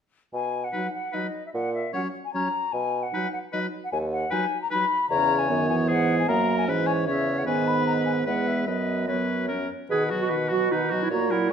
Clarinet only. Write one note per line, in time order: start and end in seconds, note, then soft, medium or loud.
0.74 0.88 D#4 soft
1.13 1.28 D#4 soft
1.94 2.08 C#4 soft
2.35 2.49 C#4 soft
3.13 3.27 D#4 soft
3.53 3.67 D#4 soft
4.32 4.46 D#4 soft
4.71 4.86 D#4 soft
5.11 5.51 C#4 soft
5.49 6.28 B3 medium
6.28 6.69 A#3 soft
6.68 7.07 C#4 soft
7.08 7.45 C#4 soft
7.46 8.22 B3 soft
8.26 8.66 B3 soft
8.66 9.07 B3 soft
9.09 9.51 B3 soft
9.50 9.70 C#4 soft
9.90 10.04 G#4 medium
10.21 10.35 F#4 soft
10.52 10.73 F#4 medium
10.72 11.01 D#4 medium
11.03 11.10 E4 medium
11.11 11.30 F#4 medium
11.31 11.50 E4 medium